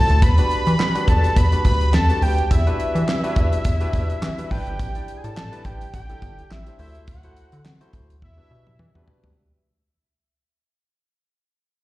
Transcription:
Already playing: tine electric piano E4 F#4 A4 C5, analog synth lead A5
0.10 analog synth bass D2, closed hi-hat
0.22 analog synth bass E2, analog synth lead B5, kick, closed hi-hat
0.38 tine electric piano D4 F#4 G4 B4, closed hi-hat
0.51 closed hi-hat
0.67 analog synth bass E3, closed hi-hat
0.80 snare, clap
0.95 tine electric piano D4 F#4 G4 B4, closed hi-hat
1.08 analog synth bass E2, analog synth lead A5, kick, closed hi-hat
1.24 closed hi-hat
1.36 analog synth bass E2, analog synth lead B5, kick, closed hi-hat
1.52 tine electric piano D4 F#4 G4 B4, closed hi-hat
1.65 analog synth bass D2, analog synth lead B5, kick, closed hi-hat
1.81 closed hi-hat
1.94 analog synth bass E2, analog synth lead A5, snare, clap
2.09 tine electric piano D4 F#4 G4 B4, closed hi-hat
2.22 analog synth bass D2, analog synth lead G5, open hi-hat
2.38 closed hi-hat
2.51 analog synth bass E2, analog synth lead E5, kick, closed hi-hat
2.66 tine electric piano D4 F#4 G4 B4, closed hi-hat
2.80 closed hi-hat
2.95 analog synth bass E3, closed hi-hat
3.09 snare, clap
3.23 tine electric piano D4 F#4 G4 B4, closed hi-hat
3.36 analog synth bass E2, kick, closed hi-hat
3.53 closed hi-hat
3.65 analog synth bass E2, kick, closed hi-hat
3.81 tine electric piano D4 F#4 G4 B4, closed hi-hat
3.93 analog synth bass E2, kick, closed hi-hat
4.10 closed hi-hat
4.22 analog synth bass E3, snare, clap
4.38 tine electric piano D4 F#4 G4 B4, closed hi-hat
4.51 analog synth bass A1, tine electric piano D4 E4 G4 B4, analog synth lead G5, kick, open hi-hat
4.67 analog synth bass G1, closed hi-hat
4.79 analog synth bass A1, kick, closed hi-hat
4.95 tine electric piano D4 E4 G4 D5, closed hi-hat
5.08 closed hi-hat
5.17 analog synth lead G#5
5.24 analog synth bass A2, analog synth lead A5, closed hi-hat
5.37 snare, clap
5.52 tine electric piano D4 E4 G4 B4, closed hi-hat
5.65 analog synth bass A1, analog synth lead G5, kick, closed hi-hat
5.81 closed hi-hat
5.94 analog synth bass A1, analog synth lead G5, kick, closed hi-hat
6.09 tine electric piano D4 E4 G4 A4, closed hi-hat
6.22 analog synth bass G1, kick, closed hi-hat
6.38 closed hi-hat
6.51 analog synth bass A1, analog synth lead E5, snare, clap
6.67 tine electric piano D4 E4 G4 C5, closed hi-hat
6.79 analog synth bass D2, tine electric piano E4 F#4 A4 C5, analog synth lead E5, open hi-hat
6.95 closed hi-hat
7.07 analog synth bass D2, analog synth lead F#5, kick, closed hi-hat
7.23 tine electric piano E4 F#4 A4 C5, closed hi-hat
7.37 closed hi-hat
7.52 analog synth bass D3, closed hi-hat
7.66 snare, clap
7.81 tine electric piano E4 F#4 A4 C5, closed hi-hat
7.93 analog synth bass D2, kick, closed hi-hat
8.10 closed hi-hat
8.22 analog synth bass E2, analog synth lead E5, kick, high tom
8.37 tine electric piano D4 F#4 G4 B4
8.51 analog synth bass B2
8.67 mid tom
8.79 analog synth bass E3, mid tom
8.95 analog synth bass E2, tine electric piano D4 F#4 G4 B4, mid tom
9.08 floor tom
9.24 analog synth bass D2, floor tom

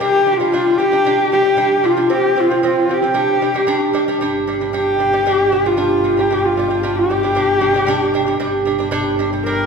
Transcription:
0.00 lute G3 D4, horsehead fiddle G4
0.26 lute G3 D4
0.32 horsehead fiddle G4
0.38 lute G3 D4, horsehead fiddle F4
0.52 lute G3 D4
0.78 lute G3 D4, horsehead fiddle G4
0.92 lute G3 D4
1.05 lute G3 D4
1.32 lute G3 D4, horsehead fiddle G4
1.44 lute G3 D4
1.57 lute G3 D4
1.83 lute G3 D4, horsehead fiddle F4
1.97 lute G3 D4
2.10 lute F3 C4
2.14 horsehead fiddle G4
2.36 lute F3 C4, horsehead fiddle F4
2.51 lute F3 C4
2.63 lute F3 C4, horsehead fiddle F4
2.89 lute F3 C4
2.94 horsehead fiddle G4
3.02 lute F3 C4
3.14 lute G3 D4
3.41 lute G3 D4
3.54 lute G3 D4
3.67 lute G3 D4
3.93 lute G3 D4
4.08 lute G3 D4
4.20 double bass G1, lute G3 D4
4.47 lute G3 D4
4.61 lute G3 D4
4.73 lute G3 D4, horsehead fiddle G4
4.99 lute G3 D4
5.13 lute G3 D4
5.26 lute G3 D4
5.52 lute G3 D4
5.66 lute G3 D4, horsehead fiddle F4
5.77 lute G3 D4
6.04 lute G3 D4
6.17 lute G3 D4, horsehead fiddle G4
6.31 lute G3 D4
6.45 horsehead fiddle F4
6.57 lute G3 D4
6.70 lute G3 D4
6.83 lute G3 D4
6.99 horsehead fiddle G4
7.10 lute G3 D4
7.23 lute G3 D4
7.35 lute G3 D4
7.61 lute G3 D4
7.74 lute G3 D4
7.87 lute G3 D4
8.14 lute G3 D4
8.27 lute G3 D4
8.40 double bass G1, lute G3 D4
8.65 lute G3 D4
8.79 lute G3 D4
8.91 lute G3 D4
9.19 lute G3 D4
9.33 lute G3 D4
9.45 lute G3 D4, horsehead fiddle A#4

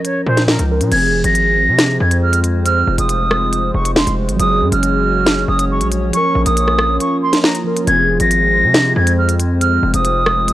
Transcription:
Already playing: tine electric piano F3 C#4 A#4
0.05 flute C#5, closed hi-hat
0.27 808-style bass A#2, flute C5
0.37 snare, closed hi-hat
0.48 flute A#4, snare
0.59 808-style bass C#2, closed hi-hat
0.68 tine electric piano F3 C#4 A#4
0.81 808-style bass A#2, closed hi-hat
0.89 808-style bass F1, tine electric piano F3 C4, analog synth pad G#3 C4 F4 C5, flute G#6, closed hi-hat, crash
0.96 tine electric piano G#4
1.24 808-style bass G#1, flute A#6, closed hi-hat
1.35 closed hi-hat
1.68 808-style bass C3
1.79 snare, closed hi-hat
2.00 808-style bass F2, flute G#6
2.11 closed hi-hat
2.23 flute F6
2.33 closed hi-hat
2.44 closed hi-hat
2.65 flute F6, closed hi-hat
2.87 808-style bass F1
2.98 808-style bass F1, flute D#6, closed hi-hat
3.09 closed hi-hat
3.31 cross-stick
3.53 closed hi-hat
3.74 808-style bass F1, flute C#6
3.85 closed hi-hat
3.96 flute C6, snare
4.07 808-style bass F1, closed hi-hat
4.29 808-style bass G#1, closed hi-hat
4.36 808-style bass F#1, tine electric piano F#3 C#4, analog synth pad C#4 F#4 C#5, flute D#6, closed hi-hat
4.43 tine electric piano G#4
4.61 808-style bass F#2
4.72 808-style bass F#1, flute F6, closed hi-hat
4.83 closed hi-hat
5.26 snare, closed hi-hat
5.48 808-style bass F#1, flute D#6
5.59 closed hi-hat
5.71 flute C#6
5.81 808-style bass A#1, closed hi-hat
5.92 closed hi-hat
6.10 tine electric piano F3 C#4, analog synth pad A#3 F4, flute C#6, closed hi-hat
6.17 tine electric piano A#4
6.35 808-style bass A#1
6.45 808-style bass A#1, flute D#6, closed hi-hat
6.57 closed hi-hat
6.68 cross-stick
6.79 cross-stick
7.00 flute C#6, closed hi-hat
7.22 flute C6
7.33 snare, closed hi-hat
7.43 flute A#5, snare
7.55 closed hi-hat
7.64 tine electric piano F3 C#4 A#4
7.76 closed hi-hat
7.85 808-style bass F1, tine electric piano F3 C4, analog synth pad G#3 C4 C5, flute G#6, closed hi-hat
7.91 tine electric piano G#4
8.20 808-style bass G#1, flute A#6, closed hi-hat
8.31 closed hi-hat
8.63 808-style bass C3
8.74 snare, closed hi-hat
8.96 808-style bass F2, flute G#6
9.07 closed hi-hat
9.18 flute F6
9.29 closed hi-hat
9.40 closed hi-hat
9.61 flute F6, closed hi-hat
9.83 808-style bass F1
9.94 808-style bass F1, flute D#6, closed hi-hat
10.05 closed hi-hat
10.26 cross-stick
10.48 closed hi-hat

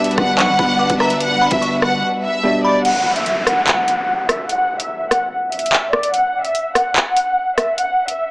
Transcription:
Already playing: felt piano B2 G3 D4 B4, string section G3 D4 B4, violin section E5, synth bell D6
0.04 closed hi-hat
0.11 closed hi-hat
0.18 808-style bass G1, violin section F#5, kick, cross-stick
0.38 808-style bass B1, violin section F#5, synth bell C#6, clap, closed hi-hat
0.49 808-style bass G1
0.59 808-style bass G1, synth bell B5, kick
0.79 synth bell D6
0.90 808-style bass G1, kick, closed hi-hat
1.00 violin section E5, synth bell A#5, cross-stick
1.10 closed hi-hat
1.20 violin section F#5, closed hi-hat
1.42 synth bell B5
1.51 808-style bass G1, violin section E5, kick, closed hi-hat
1.62 synth bell C#6, closed hi-hat
1.82 violin section F#5, cross-stick
2.23 violin section E5
2.43 felt piano B2 G3 D4 D5
2.64 violin section D5, synth bell B5
2.85 violin section F#5, closed hi-hat, crash, downlifter
3.15 violin section E5, closed hi-hat
3.26 closed hi-hat
3.47 violin section F#5, cross-stick, closed hi-hat
3.67 violin section F#5, clap, closed hi-hat
3.88 closed hi-hat
4.29 violin section E5, cross-stick, closed hi-hat
4.49 violin section F#5, closed hi-hat
4.80 violin section E5, closed hi-hat
5.11 violin section F#5, cross-stick, closed hi-hat
5.52 violin section E5, closed hi-hat
5.59 closed hi-hat
5.66 closed hi-hat
5.73 clap
5.93 violin section D5, cross-stick
6.03 closed hi-hat
6.14 violin section F#5, closed hi-hat
6.44 violin section E5, closed hi-hat
6.55 closed hi-hat
6.75 violin section F#5, cross-stick, closed hi-hat
6.96 violin section F#5, clap, closed hi-hat
7.17 closed hi-hat
7.57 violin section E5, cross-stick, closed hi-hat
7.78 violin section F#5, closed hi-hat
8.08 violin section E5, closed hi-hat

